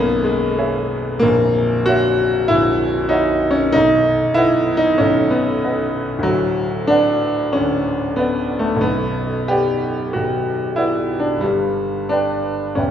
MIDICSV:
0, 0, Header, 1, 2, 480
1, 0, Start_track
1, 0, Key_signature, 5, "major"
1, 0, Tempo, 628931
1, 932, Time_signature, 4, 2, 24, 8
1, 932, Tempo, 672646
1, 1412, Tempo, 618557
1, 4772, Tempo, 647249
1, 4774, Key_signature, 2, "minor"
1, 6692, Tempo, 687285
1, 7172, Tempo, 641026
1, 8612, Tempo, 670391
1, 9675, End_track
2, 0, Start_track
2, 0, Title_t, "Grand piano"
2, 0, Program_c, 0, 0
2, 0, Control_c, 0, 64, 127
2, 0, Note_on_c, 0, 23, 53
2, 0, Note_on_c, 0, 35, 58
2, 0, Note_on_c, 0, 58, 100
2, 0, Note_on_c, 0, 59, 102
2, 0, Note_on_c, 0, 61, 102
2, 0, Note_on_c, 0, 68, 51
2, 0, Note_on_c, 0, 73, 49
2, 0, Note_on_c, 0, 76, 54
2, 182, Note_on_c, 0, 56, 85
2, 198, Note_off_c, 0, 58, 0
2, 447, Note_off_c, 0, 73, 0
2, 447, Note_on_c, 0, 73, 48
2, 448, Note_off_c, 0, 68, 0
2, 448, Note_on_c, 0, 68, 47
2, 450, Note_off_c, 0, 76, 0
2, 450, Note_on_c, 0, 76, 51
2, 672, Note_off_c, 0, 56, 0
2, 897, Note_off_c, 0, 23, 0
2, 899, Note_off_c, 0, 35, 0
2, 900, Note_off_c, 0, 73, 0
2, 901, Note_off_c, 0, 68, 0
2, 902, Note_off_c, 0, 76, 0
2, 912, Note_on_c, 0, 58, 109
2, 934, Note_on_c, 0, 22, 62
2, 935, Note_on_c, 0, 34, 72
2, 943, Control_c, 0, 64, 0
2, 948, Note_off_c, 0, 59, 0
2, 948, Note_off_c, 0, 61, 0
2, 1066, Control_c, 0, 64, 127
2, 1385, Note_on_c, 0, 66, 113
2, 1403, Note_off_c, 0, 58, 0
2, 1408, Note_on_c, 0, 73, 50
2, 1408, Note_on_c, 0, 76, 50
2, 1410, Note_on_c, 0, 78, 53
2, 1858, Note_off_c, 0, 73, 0
2, 1858, Note_off_c, 0, 76, 0
2, 1859, Note_off_c, 0, 78, 0
2, 1863, Note_off_c, 0, 22, 0
2, 1863, Note_off_c, 0, 34, 0
2, 1867, Note_on_c, 0, 64, 107
2, 1877, Note_off_c, 0, 66, 0
2, 1883, Note_on_c, 0, 34, 56
2, 1885, Note_on_c, 0, 22, 58
2, 2339, Note_on_c, 0, 63, 95
2, 2354, Note_on_c, 0, 73, 48
2, 2357, Note_off_c, 0, 64, 0
2, 2361, Note_on_c, 0, 76, 50
2, 2365, Note_on_c, 0, 78, 51
2, 2663, Note_on_c, 0, 61, 94
2, 2671, Note_off_c, 0, 63, 0
2, 2808, Note_off_c, 0, 73, 0
2, 2812, Note_off_c, 0, 76, 0
2, 2813, Note_off_c, 0, 78, 0
2, 2814, Note_off_c, 0, 22, 0
2, 2814, Note_off_c, 0, 34, 0
2, 2832, Note_on_c, 0, 63, 106
2, 2835, Note_off_c, 0, 61, 0
2, 2847, Note_on_c, 0, 23, 57
2, 2850, Note_on_c, 0, 35, 69
2, 2859, Control_c, 0, 64, 0
2, 2978, Control_c, 0, 64, 127
2, 3313, Note_on_c, 0, 64, 113
2, 3324, Note_off_c, 0, 63, 0
2, 3325, Note_on_c, 0, 71, 46
2, 3335, Note_on_c, 0, 78, 55
2, 3336, Note_on_c, 0, 75, 51
2, 3642, Note_off_c, 0, 64, 0
2, 3645, Note_on_c, 0, 63, 99
2, 3779, Note_off_c, 0, 71, 0
2, 3784, Note_off_c, 0, 23, 0
2, 3784, Note_off_c, 0, 75, 0
2, 3784, Note_off_c, 0, 78, 0
2, 3785, Note_off_c, 0, 35, 0
2, 3806, Note_on_c, 0, 61, 94
2, 3810, Note_off_c, 0, 63, 0
2, 3824, Note_on_c, 0, 23, 57
2, 3824, Note_on_c, 0, 35, 55
2, 4052, Note_off_c, 0, 61, 0
2, 4059, Note_on_c, 0, 59, 84
2, 4321, Note_on_c, 0, 75, 47
2, 4322, Note_on_c, 0, 71, 48
2, 4325, Note_on_c, 0, 78, 48
2, 4535, Note_off_c, 0, 59, 0
2, 4745, Note_on_c, 0, 38, 64
2, 4751, Note_off_c, 0, 23, 0
2, 4751, Note_off_c, 0, 35, 0
2, 4755, Note_off_c, 0, 75, 0
2, 4756, Note_off_c, 0, 71, 0
2, 4757, Note_off_c, 0, 78, 0
2, 4776, Note_on_c, 0, 54, 100
2, 4788, Control_c, 0, 64, 0
2, 4793, Note_on_c, 0, 26, 59
2, 4915, Control_c, 0, 64, 127
2, 5254, Note_on_c, 0, 62, 96
2, 5266, Note_off_c, 0, 54, 0
2, 5272, Note_on_c, 0, 71, 48
2, 5275, Note_on_c, 0, 74, 48
2, 5277, Note_on_c, 0, 78, 51
2, 5699, Note_off_c, 0, 38, 0
2, 5716, Note_off_c, 0, 71, 0
2, 5718, Note_off_c, 0, 74, 0
2, 5719, Note_off_c, 0, 78, 0
2, 5723, Note_off_c, 0, 26, 0
2, 5737, Note_off_c, 0, 62, 0
2, 5738, Note_on_c, 0, 61, 90
2, 5753, Note_on_c, 0, 26, 57
2, 5753, Note_on_c, 0, 38, 49
2, 6209, Note_on_c, 0, 59, 84
2, 6217, Note_off_c, 0, 61, 0
2, 6220, Note_on_c, 0, 71, 44
2, 6229, Note_on_c, 0, 74, 43
2, 6230, Note_on_c, 0, 78, 47
2, 6528, Note_on_c, 0, 57, 85
2, 6529, Note_off_c, 0, 59, 0
2, 6654, Note_on_c, 0, 35, 62
2, 6665, Note_off_c, 0, 71, 0
2, 6669, Note_off_c, 0, 74, 0
2, 6670, Note_off_c, 0, 78, 0
2, 6671, Note_off_c, 0, 26, 0
2, 6671, Note_off_c, 0, 38, 0
2, 6689, Note_on_c, 0, 59, 94
2, 6691, Note_off_c, 0, 57, 0
2, 6697, Note_on_c, 0, 23, 57
2, 6705, Control_c, 0, 64, 0
2, 6835, Control_c, 0, 64, 127
2, 7160, Note_on_c, 0, 67, 104
2, 7168, Note_on_c, 0, 71, 42
2, 7171, Note_off_c, 0, 59, 0
2, 7174, Note_on_c, 0, 74, 46
2, 7179, Note_on_c, 0, 78, 52
2, 7605, Note_off_c, 0, 35, 0
2, 7623, Note_off_c, 0, 71, 0
2, 7626, Note_off_c, 0, 74, 0
2, 7627, Note_off_c, 0, 23, 0
2, 7628, Note_off_c, 0, 78, 0
2, 7645, Note_on_c, 0, 66, 77
2, 7648, Note_off_c, 0, 67, 0
2, 7662, Note_on_c, 0, 23, 47
2, 7664, Note_on_c, 0, 35, 43
2, 8115, Note_on_c, 0, 64, 83
2, 8121, Note_off_c, 0, 66, 0
2, 8129, Note_on_c, 0, 71, 39
2, 8129, Note_on_c, 0, 74, 43
2, 8134, Note_on_c, 0, 78, 42
2, 8441, Note_on_c, 0, 62, 72
2, 8443, Note_off_c, 0, 64, 0
2, 8575, Note_on_c, 0, 31, 50
2, 8585, Note_off_c, 0, 71, 0
2, 8585, Note_off_c, 0, 74, 0
2, 8588, Note_off_c, 0, 23, 0
2, 8588, Note_off_c, 0, 78, 0
2, 8589, Note_off_c, 0, 35, 0
2, 8600, Note_on_c, 0, 55, 84
2, 8610, Note_off_c, 0, 62, 0
2, 8620, Note_on_c, 0, 43, 60
2, 8627, Control_c, 0, 64, 0
2, 8774, Control_c, 0, 64, 127
2, 9091, Note_on_c, 0, 62, 84
2, 9101, Note_off_c, 0, 55, 0
2, 9108, Note_on_c, 0, 71, 41
2, 9108, Note_on_c, 0, 74, 39
2, 9113, Note_on_c, 0, 79, 39
2, 9529, Note_off_c, 0, 31, 0
2, 9548, Note_off_c, 0, 71, 0
2, 9548, Note_off_c, 0, 74, 0
2, 9550, Note_off_c, 0, 79, 0
2, 9551, Note_off_c, 0, 43, 0
2, 9564, Note_on_c, 0, 61, 70
2, 9568, Note_off_c, 0, 62, 0
2, 9575, Note_on_c, 0, 28, 41
2, 9580, Note_on_c, 0, 40, 49
2, 9580, Note_on_c, 0, 71, 32
2, 9584, Note_on_c, 0, 76, 31
2, 9585, Note_on_c, 0, 79, 37
2, 9589, Control_c, 0, 64, 0
2, 9675, Note_off_c, 0, 28, 0
2, 9675, Note_off_c, 0, 40, 0
2, 9675, Note_off_c, 0, 61, 0
2, 9675, Note_off_c, 0, 71, 0
2, 9675, Note_off_c, 0, 76, 0
2, 9675, Note_off_c, 0, 79, 0
2, 9675, End_track
0, 0, End_of_file